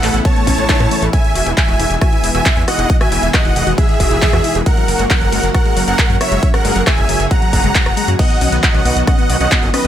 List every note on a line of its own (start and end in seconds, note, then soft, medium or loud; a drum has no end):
0.00 0.10 A1 loud
0.00 1.10 C#3 medium
0.00 4.62 E3 medium
0.00 0.11 A3 medium
0.00 1.12 B3 medium
0.00 2.86 E4 medium
0.00 0.18 A4 medium
0.00 0.18 F#5 loud
0.00 clap medium
0.00 open hi-hat loud
0.14 0.21 A1 medium
0.14 closed hi-hat medium
0.25 0.30 B3 medium
0.25 1.05 C#5 medium
0.25 1.05 A5 loud
0.25 kick loud
0.25 closed hi-hat soft
0.36 0.44 A3 medium
0.36 closed hi-hat soft
0.47 0.54 A1 loud
0.47 0.52 C#4 medium
0.47 kick medium
0.47 open hi-hat loud
0.58 0.65 A1 medium
0.58 0.66 A3 medium
0.58 closed hi-hat medium
0.69 0.74 D#4 medium
0.69 kick loud
0.69 clap loud
0.69 closed hi-hat soft
0.80 0.87 A2 medium
0.80 0.85 E3 medium
0.80 cross-stick medium
0.80 closed hi-hat soft
0.91 0.96 A3 medium
0.91 open hi-hat loud
1.02 1.09 A1 medium
1.02 1.10 A4 loud
1.02 closed hi-hat medium
1.13 4.63 B2 medium
1.13 4.63 G#3 medium
1.13 1.21 E4 medium
1.13 1.50 E5 medium
1.13 1.50 G#5 loud
1.13 kick loud
1.13 closed hi-hat medium
1.24 closed hi-hat soft
1.35 1.42 E1 medium
1.35 1.40 F#4 medium
1.35 open hi-hat loud
1.46 1.53 E1 medium
1.46 1.54 E4 medium
1.46 closed hi-hat soft
1.57 1.95 E5 medium
1.57 1.94 G#5 loud
1.57 kick loud
1.57 clap loud
1.57 closed hi-hat medium
1.68 1.75 E1 medium
1.68 1.74 F#4 medium
1.68 closed hi-hat soft
1.79 1.86 E1 loud
1.79 1.87 E4 medium
1.79 open hi-hat loud
1.90 1.97 E1 medium
1.90 closed hi-hat medium
2.01 2.07 F#4 medium
2.01 2.29 E5 medium
2.01 2.29 G#5 loud
2.01 kick loud
2.01 cross-stick medium
2.01 closed hi-hat medium
2.13 2.20 E4 medium
2.13 closed hi-hat soft
2.23 2.30 E1 loud
2.23 open hi-hat loud
2.34 2.41 E1 medium
2.34 2.40 F#4 medium
2.34 2.62 E5 medium
2.34 2.62 G#5 loud
2.34 closed hi-hat medium
2.46 2.53 E4 medium
2.46 kick loud
2.46 clap loud
2.46 closed hi-hat medium
2.57 2.64 E2 medium
2.57 closed hi-hat soft
2.67 2.73 F#4 medium
2.67 2.95 D#5 medium
2.67 2.95 F#5 loud
2.67 cross-stick medium
2.67 open hi-hat loud
2.79 2.86 E1 medium
2.79 2.86 E4 medium
2.79 closed hi-hat medium
2.90 4.64 D#3 medium
2.90 kick loud
2.90 closed hi-hat medium
3.01 3.06 F#4 medium
3.01 3.29 E5 medium
3.01 3.29 G#5 loud
3.01 cross-stick medium
3.01 closed hi-hat soft
3.12 3.19 E1 medium
3.12 3.20 E4 medium
3.12 open hi-hat loud
3.23 3.30 E1 medium
3.23 closed hi-hat medium
3.34 3.39 F#4 medium
3.34 3.71 D#5 medium
3.34 3.71 F#5 loud
3.34 kick loud
3.34 cross-stick medium
3.34 clap loud
3.34 closed hi-hat medium
3.45 3.52 E1 medium
3.45 3.53 E4 medium
3.45 closed hi-hat soft
3.56 3.63 E1 medium
3.56 open hi-hat loud
3.67 3.74 E1 medium
3.67 3.72 F#4 medium
3.67 closed hi-hat medium
3.78 3.86 E4 medium
3.78 4.57 G#4 medium
3.78 4.57 E5 loud
3.78 kick loud
3.78 closed hi-hat medium
3.89 closed hi-hat soft
4.00 4.07 E1 loud
4.00 4.05 F#4 medium
4.00 kick medium
4.00 open hi-hat loud
4.11 4.18 E1 medium
4.11 4.19 E4 medium
4.11 closed hi-hat medium
4.22 kick loud
4.22 clap loud
4.22 closed hi-hat soft
4.33 4.40 E2 medium
4.33 4.38 F#4 medium
4.33 cross-stick medium
4.33 closed hi-hat soft
4.44 4.52 E4 medium
4.44 open hi-hat loud
4.55 4.62 E1 medium
4.55 closed hi-hat medium
4.66 8.16 C#3 medium
4.66 9.87 F#3 medium
4.66 4.71 G#3 medium
4.66 8.16 A#3 medium
4.66 6.41 F#4 medium
4.66 5.03 A#4 medium
4.66 5.03 F#5 loud
4.66 kick loud
4.66 closed hi-hat medium
4.77 4.85 F#3 medium
4.77 closed hi-hat soft
4.88 4.95 F#1 medium
4.88 open hi-hat loud
4.99 5.06 F#1 medium
4.99 5.04 G#3 medium
4.99 closed hi-hat medium
5.10 5.18 F#3 medium
5.10 5.47 A#4 medium
5.10 5.48 F#5 loud
5.10 kick loud
5.10 clap loud
5.10 closed hi-hat medium
5.21 5.28 F#1 medium
5.21 closed hi-hat soft
5.32 5.39 F#1 loud
5.32 5.38 G#3 medium
5.32 open hi-hat loud
5.43 5.50 F#1 medium
5.43 5.51 F#3 medium
5.43 closed hi-hat medium
5.54 5.82 A#4 medium
5.54 5.82 F#5 loud
5.54 kick loud
5.54 cross-stick medium
5.54 closed hi-hat medium
5.65 5.71 G#3 medium
5.65 closed hi-hat soft
5.77 5.83 F#1 medium
5.77 5.84 F#3 medium
5.77 open hi-hat loud
5.88 5.94 F#1 medium
5.88 6.15 A#4 medium
5.88 6.15 F#5 loud
5.88 closed hi-hat medium
5.99 6.04 G#3 medium
5.99 kick loud
5.99 clap loud
5.99 closed hi-hat medium
6.10 6.17 F#2 medium
6.10 6.17 F#3 medium
6.10 closed hi-hat soft
6.21 6.49 C#5 medium
6.21 6.49 E5 loud
6.21 cross-stick medium
6.21 open hi-hat loud
6.32 6.39 F#1 medium
6.32 6.37 G#3 medium
6.32 closed hi-hat medium
6.43 6.50 F#3 medium
6.43 8.18 G#4 medium
6.43 kick loud
6.43 closed hi-hat medium
6.54 6.82 A#4 medium
6.54 6.82 F#5 loud
6.54 cross-stick medium
6.54 closed hi-hat soft
6.65 6.72 F#1 medium
6.65 6.70 G#3 medium
6.65 open hi-hat loud
6.76 6.83 F#1 medium
6.76 6.84 F#3 medium
6.76 closed hi-hat medium
6.87 7.24 E5 medium
6.87 7.24 G#5 loud
6.87 kick loud
6.87 cross-stick medium
6.87 clap loud
6.87 closed hi-hat medium
6.98 7.05 F#1 medium
6.98 7.03 G#3 medium
6.98 closed hi-hat soft
7.09 7.16 F#1 loud
7.09 7.17 F#3 medium
7.09 open hi-hat loud
7.20 7.27 F#1 medium
7.20 closed hi-hat medium
7.31 7.36 G#3 medium
7.31 8.10 F#5 medium
7.31 8.10 A#5 loud
7.31 kick loud
7.31 closed hi-hat medium
7.42 7.50 F#3 medium
7.42 closed hi-hat soft
7.53 7.60 F#1 loud
7.53 kick medium
7.53 open hi-hat loud
7.64 7.71 F#1 medium
7.64 7.69 G#3 medium
7.64 closed hi-hat medium
7.75 7.83 F#3 medium
7.75 kick loud
7.75 clap loud
7.75 closed hi-hat medium
7.86 7.93 F#1 medium
7.86 cross-stick medium
7.86 closed hi-hat soft
7.97 8.02 G#3 medium
7.97 open hi-hat loud
8.08 8.15 F#2 medium
8.08 8.16 F#3 medium
8.08 closed hi-hat medium
8.19 9.87 D#3 medium
8.19 8.27 B3 medium
8.19 9.87 B3 medium
8.19 9.87 F#4 medium
8.19 8.56 D#5 medium
8.19 8.56 F#5 loud
8.19 kick loud
8.19 closed hi-hat medium
8.19 crash medium
8.30 closed hi-hat soft
8.41 8.48 B1 loud
8.41 8.46 C#4 medium
8.41 open hi-hat loud
8.52 8.59 B1 medium
8.52 8.60 B3 medium
8.52 closed hi-hat medium
8.63 9.00 D#5 medium
8.63 9.01 F#5 loud
8.63 kick loud
8.63 clap loud
8.63 closed hi-hat medium
8.74 8.81 B1 medium
8.74 8.79 C#4 medium
8.74 closed hi-hat soft
8.85 8.92 B1 loud
8.85 8.93 B3 medium
8.85 open hi-hat loud
8.96 9.03 B1 medium
8.96 closed hi-hat medium
9.07 9.13 C#4 medium
9.07 9.35 D#5 medium
9.07 9.35 F#5 loud
9.07 kick loud
9.07 cross-stick medium
9.07 closed hi-hat medium
9.18 9.26 B3 medium
9.18 closed hi-hat soft
9.30 9.36 B1 loud
9.30 open hi-hat loud
9.40 9.47 B1 medium
9.40 9.46 C#4 medium
9.40 9.68 D#5 medium
9.40 9.68 F#5 loud
9.40 closed hi-hat medium
9.52 9.59 B3 medium
9.52 kick loud
9.52 clap loud
9.52 closed hi-hat medium
9.63 9.70 F#1 medium
9.63 closed hi-hat soft
9.74 9.79 C#4 medium
9.74 9.87 B4 medium
9.74 9.87 D#5 loud
9.74 cross-stick medium
9.74 open hi-hat loud